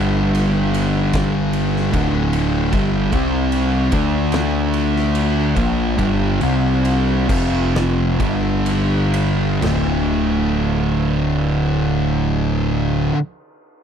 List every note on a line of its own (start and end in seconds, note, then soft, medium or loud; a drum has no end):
0.00 1.89 G1 loud
0.00 1.92 G2 medium
0.00 1.92 D3 medium
0.00 1.92 G3 loud
0.35 ride loud
0.74 ride medium
1.13 kick loud
1.13 snare loud
1.13 ride loud
1.53 ride medium
1.76 snare soft
1.92 2.69 D1 loud
1.92 2.71 D2 loud
1.92 2.72 A2 medium
1.92 2.72 D3 loud
1.92 kick loud
1.92 ride loud
2.33 ride medium
2.72 3.10 G1 loud
2.72 3.11 G2 medium
2.72 3.12 D3 loud
2.72 3.12 G3 loud
2.72 kick loud
2.72 ride loud
3.12 3.89 C2 loud
3.12 3.92 C3 medium
3.12 3.92 G3 medium
3.12 3.92 C4 loud
3.12 kick loud
3.12 ride medium
3.52 ride loud
3.92 5.53 D2 loud
3.92 5.56 D3 loud
3.92 5.56 A3 loud
3.92 5.56 D4 loud
3.92 kick loud
3.92 ride medium
4.32 snare loud
4.32 ride loud
4.74 ride medium
4.96 snare soft
5.15 ride loud
5.56 5.96 A#1 loud
5.56 5.96 A#2 medium
5.56 5.98 F3 loud
5.56 5.98 A#3 loud
5.56 kick loud
5.56 ride medium
5.97 6.39 G1 medium
5.97 6.39 G2 medium
5.97 6.40 D3 loud
5.97 6.40 G3 loud
5.97 kick loud
5.97 ride medium
6.41 7.26 C2 medium
6.41 7.27 C3 loud
6.41 7.28 G3 medium
6.41 7.28 C4 loud
6.41 ride medium
6.85 ride loud
7.29 8.16 F1 loud
7.29 8.18 F2 medium
7.29 8.18 C3 loud
7.29 8.19 F3 loud
7.29 kick loud
7.29 crash loud
7.76 snare loud
8.20 9.59 G1 medium
8.20 9.61 G2 medium
8.20 9.61 D3 loud
8.20 9.61 G3 loud
8.20 kick loud
8.20 ride medium
8.66 ride loud
9.14 ride medium
9.61 13.10 D1 loud
9.61 13.12 D2 medium
9.61 13.14 A2 loud
9.61 13.16 D3 loud
9.61 snare loud
9.61 floor tom loud
9.61 crash medium